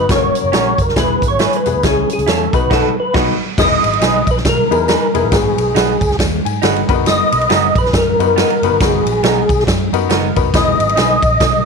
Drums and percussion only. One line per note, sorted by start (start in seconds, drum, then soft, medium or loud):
0.09 kick loud
0.09 snare loud
0.09 closed hi-hat loud
0.09 tambourine loud
0.35 closed hi-hat medium
0.35 tambourine soft
0.53 snare loud
0.53 closed hi-hat medium
0.53 tambourine loud
0.78 kick medium
0.78 closed hi-hat medium
0.78 tambourine medium
0.89 snare soft
0.96 kick medium
0.96 snare loud
0.96 closed hi-hat medium
0.96 tambourine loud
1.22 kick medium
1.22 closed hi-hat medium
1.22 tambourine medium
1.39 snare loud
1.39 closed hi-hat medium
1.39 tambourine medium
1.53 closed hi-hat medium
1.66 closed hi-hat medium
1.66 tambourine soft
1.83 kick loud
1.83 snare loud
1.83 closed hi-hat loud
1.83 tambourine medium
2.09 closed hi-hat medium
2.09 tambourine soft
2.19 closed hi-hat medium
2.27 snare loud
2.27 closed hi-hat medium
2.27 tambourine medium
2.53 kick loud
2.53 closed hi-hat medium
2.53 tambourine medium
2.71 kick loud
2.71 snare loud
2.71 crash medium
3.14 kick loud
3.14 snare loud
3.14 crash medium
3.58 kick loud
3.58 snare loud
3.58 crash loud
3.58 tambourine loud
3.84 ride medium
3.84 tambourine soft
3.93 ride soft
4.01 snare loud
4.01 ride medium
4.01 tambourine loud
4.27 kick loud
4.27 ride medium
4.27 tambourine medium
4.37 snare soft
4.45 kick loud
4.45 snare loud
4.45 ride medium
4.45 tambourine loud
4.71 ride medium
4.71 tambourine medium
4.88 snare loud
4.88 ride medium
4.88 tambourine medium
5.15 ride medium
5.15 tambourine medium
5.32 kick loud
5.32 snare loud
5.32 ride medium
5.32 tambourine loud
5.58 ride medium
5.58 tambourine soft
5.76 snare loud
5.76 ride medium
5.76 tambourine loud
6.01 kick loud
6.01 ride medium
6.01 tambourine medium
6.11 snare soft
6.19 kick medium
6.19 snare loud
6.19 ride medium
6.19 tambourine loud
6.46 ride medium
6.46 tambourine medium
6.62 snare loud
6.62 ride medium
6.62 tambourine medium
6.76 ride soft
6.89 kick loud
6.89 ride medium
6.89 tambourine medium
7.06 snare loud
7.06 ride medium
7.06 tambourine loud
7.32 ride medium
7.32 tambourine soft
7.41 ride soft
7.50 snare loud
7.50 ride medium
7.50 tambourine loud
7.75 kick loud
7.75 ride medium
7.75 tambourine medium
7.85 snare soft
7.93 kick loud
7.93 snare loud
7.93 ride medium
7.93 tambourine loud
8.20 ride medium
8.20 tambourine medium
8.37 snare loud
8.37 ride medium
8.37 tambourine medium
8.50 ride medium
8.63 ride medium
8.63 tambourine medium
8.80 kick loud
8.80 snare loud
8.80 ride medium
8.80 tambourine loud
9.06 ride medium
9.06 tambourine soft
9.23 snare loud
9.23 ride medium
9.23 tambourine medium
9.49 kick loud
9.49 ride medium
9.49 tambourine medium
9.60 snare soft
9.67 kick medium
9.67 snare loud
9.67 ride medium
9.67 tambourine loud
9.93 ride medium
9.93 tambourine medium
10.10 snare loud
10.10 ride medium
10.10 tambourine medium
10.36 kick medium
10.36 ride medium
10.36 tambourine medium
10.54 kick loud
10.54 snare loud
10.54 ride medium
10.54 tambourine loud
10.80 ride medium
10.80 tambourine soft
10.89 ride soft
10.97 snare loud
10.97 ride medium
10.97 tambourine medium
11.23 kick loud
11.23 ride medium
11.23 tambourine medium
11.40 kick loud
11.40 snare loud
11.40 ride medium
11.40 tambourine loud